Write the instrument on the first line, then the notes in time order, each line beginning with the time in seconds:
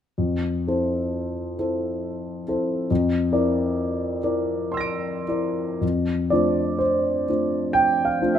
grand piano
0.18 F2
0.67 C4 E4 A4 C5
1.58 C4 E4 A4 C5
2.48 C4 E4 A4 C5
2.91 F2
3.32 C4 E4 A#4 D5
4.23 C4 E4 A#4 D5
4.72 C6 E6
4.77 A#6 D7
5.28 C4 E4 A#4 D5
5.81 F2
6.30 A3 D4 F4 C5 D5
6.78 C5
7.28 A3 D4 F4 C5
7.73 G5
8.05 F5
8.21 A3 D4 F4 C5
8.35 E5